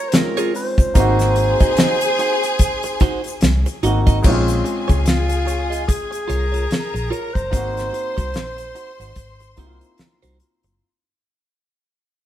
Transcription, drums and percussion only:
0.12 snare, closed hi-hat, shaker
0.37 closed hi-hat, shaker
0.55 open hi-hat, shaker
0.78 kick, closed hi-hat, shaker
0.95 kick, closed hi-hat, shaker
1.19 snare, closed hi-hat, shaker
1.36 closed hi-hat
1.60 kick, closed hi-hat, shaker
1.77 snare, closed hi-hat, shaker
2.01 closed hi-hat, shaker
2.19 closed hi-hat
2.43 closed hi-hat, shaker
2.59 kick, closed hi-hat, shaker
2.83 closed hi-hat, shaker
3.00 kick, closed hi-hat
3.24 closed hi-hat, shaker
3.41 snare, closed hi-hat, shaker
3.66 closed hi-hat, shaker
3.83 closed hi-hat, shaker
4.07 kick, closed hi-hat, shaker
4.24 kick, crash, shaker
4.48 closed hi-hat, shaker
4.66 closed hi-hat
4.89 kick, closed hi-hat, shaker
5.06 snare, closed hi-hat, shaker
5.29 closed hi-hat, shaker
5.48 closed hi-hat, shaker
5.72 closed hi-hat, shaker
5.89 kick, closed hi-hat, shaker
6.12 closed hi-hat, shaker
6.30 closed hi-hat
6.54 closed hi-hat, shaker
6.71 snare, closed hi-hat, shaker
6.96 closed hi-hat, shaker
7.13 closed hi-hat
7.35 kick, closed hi-hat, shaker
7.53 kick, closed hi-hat, shaker
7.77 snare, closed hi-hat, shaker
7.94 closed hi-hat
8.18 kick, closed hi-hat, shaker
8.34 snare, closed hi-hat, shaker
8.58 closed hi-hat, shaker
8.75 closed hi-hat, shaker
9.00 closed hi-hat, shaker
9.15 kick, closed hi-hat, shaker
9.40 closed hi-hat, shaker
9.57 kick, closed hi-hat
9.81 closed hi-hat, shaker
9.98 snare, closed hi-hat, shaker
10.23 closed hi-hat, shaker
10.40 closed hi-hat
10.63 closed hi-hat, shaker

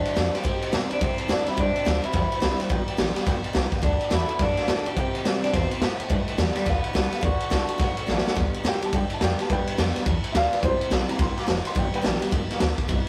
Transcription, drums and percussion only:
0.05 ride
0.17 snare, ride
0.35 snare, ride
0.45 kick, ride
0.62 ride
0.73 snare, ride
0.91 ride
1.01 kick, ride
1.18 ride
1.29 snare, ride
1.47 snare, ride
1.58 kick, ride
1.76 ride
1.86 snare, ride
2.04 ride
2.13 kick, snare, ride
2.32 ride
2.42 snare, ride
2.60 snare, ride
2.70 kick, ride
2.88 ride
2.98 snare, ride
3.16 snare, ride
3.27 kick, snare, ride
3.44 ride
3.55 snare, ride
3.72 kick, snare, ride
3.83 kick, ride
4.01 ride
4.11 snare, ride
4.29 ride
4.39 kick, snare, ride
4.57 snare, ride
4.68 snare, ride
4.86 ride
4.97 kick, ride
5.15 ride
5.25 snare, ride
5.44 snare, ride
5.54 kick, snare, ride
5.71 ride
5.82 snare, ride
6.00 ride
6.10 kick, ride
6.28 ride
6.38 snare, ride
6.56 snare, ride
6.66 kick, snare, ride
6.84 ride
6.95 snare, ride
7.12 snare, ride
7.23 kick, ride
7.41 ride
7.51 snare, ride
7.69 ride
7.80 kick, snare, ride
7.97 ride
8.08 snare
8.18 snare
8.27 snare
8.36 kick, ride
8.54 ride
8.65 snare, ride
8.82 ride
8.93 kick, ride
9.10 ride
9.21 snare, ride
9.39 snare, ride
9.50 kick, ride
9.67 ride
9.78 snare, ride
9.96 snare, ride
10.06 kick, ride
10.24 ride
10.35 snare, ride
10.53 snare, ride
10.63 kick, ride
10.81 ride
10.91 snare, ride
11.09 snare, ride
11.19 kick, snare, ride
11.37 snare, ride
11.48 snare, ride
11.65 snare, ride
11.76 kick, ride
11.94 ride
12.04 snare, ride
12.22 snare, ride
12.32 kick, ride
12.51 snare, ride
12.60 snare, ride
12.78 kick, snare, ride
12.89 kick, ride

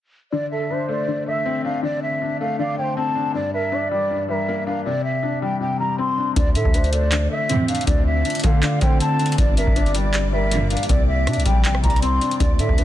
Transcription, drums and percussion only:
6.36 kick, closed hi-hat
6.55 closed hi-hat
6.65 kick
6.74 closed hi-hat
6.84 closed hi-hat
6.93 closed hi-hat
7.12 clap, closed hi-hat
7.49 closed hi-hat
7.68 closed hi-hat
7.75 closed hi-hat
7.81 closed hi-hat
7.87 kick, closed hi-hat
8.25 closed hi-hat
8.30 closed hi-hat
8.35 closed hi-hat
8.39 closed hi-hat
8.44 kick, closed hi-hat
8.63 clap, closed hi-hat
8.81 kick, closed hi-hat
9.00 closed hi-hat
9.19 closed hi-hat
9.26 closed hi-hat
9.32 closed hi-hat
9.38 kick, closed hi-hat
9.57 closed hi-hat
9.67 kick
9.76 closed hi-hat
9.86 closed hi-hat
9.95 closed hi-hat
10.14 clap, closed hi-hat
10.51 closed hi-hat
10.70 closed hi-hat
10.77 closed hi-hat
10.83 closed hi-hat
10.89 kick, closed hi-hat
11.27 cross-stick, closed hi-hat
11.33 closed hi-hat
11.40 closed hi-hat
11.46 kick, closed hi-hat
11.65 clap, closed hi-hat
11.75 cross-stick
11.84 kick, closed hi-hat
11.90 closed hi-hat
11.96 closed hi-hat
12.02 closed hi-hat
12.21 closed hi-hat
12.31 closed hi-hat
12.40 kick, closed hi-hat
12.59 closed hi-hat
12.69 kick
12.78 closed hi-hat

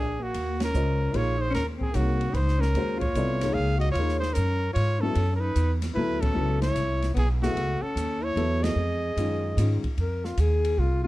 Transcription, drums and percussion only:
0.34 ride
0.60 snare, ride
0.74 hi-hat pedal
1.14 ride
1.54 snare, ride
1.81 kick
1.94 hi-hat pedal, ride
2.21 ride
2.34 ride
2.48 snare
2.62 snare
2.75 ride
3.01 kick, ride
3.15 hi-hat pedal, ride
3.41 snare, ride
3.81 ride
3.95 ride
4.09 snare
4.22 snare
4.35 hi-hat pedal, ride
4.76 ride
5.15 ride
5.56 hi-hat pedal, ride
5.82 snare, ride
6.23 kick, ride
6.62 snare, ride
6.76 hi-hat pedal, ride
7.02 snare, ride
7.17 ride
7.43 snare
7.57 ride
7.97 hi-hat pedal, ride
8.37 ride
8.64 snare, ride
9.17 hi-hat pedal, ride
9.58 hi-hat pedal, ride
9.84 kick, ride
9.98 ride
10.25 snare
10.38 hi-hat pedal, ride
10.65 ride

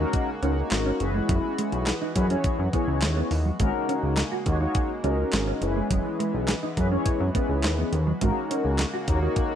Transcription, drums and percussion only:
0.13 kick, closed hi-hat
0.43 closed hi-hat
0.71 snare, clap, closed hi-hat
1.00 closed hi-hat
1.29 kick, closed hi-hat
1.58 closed hi-hat
1.72 closed hi-hat
1.86 snare, clap, closed hi-hat
2.16 kick, closed hi-hat
2.30 closed hi-hat
2.44 kick, closed hi-hat
2.73 kick, closed hi-hat
3.02 snare, clap, closed hi-hat
3.31 open hi-hat
3.60 kick, closed hi-hat
3.89 closed hi-hat
4.17 snare, clap, closed hi-hat
4.46 kick, closed hi-hat
4.75 kick, closed hi-hat
5.04 closed hi-hat
5.33 snare, clap, closed hi-hat
5.62 closed hi-hat
5.91 kick, closed hi-hat
6.20 closed hi-hat
6.48 snare, clap, closed hi-hat
6.77 kick, closed hi-hat
7.06 kick, closed hi-hat
7.35 kick, closed hi-hat
7.63 snare, clap, closed hi-hat
7.93 closed hi-hat
8.21 kick, closed hi-hat
8.51 closed hi-hat
8.78 snare, clap, closed hi-hat
9.08 kick, closed hi-hat
9.36 kick, closed hi-hat

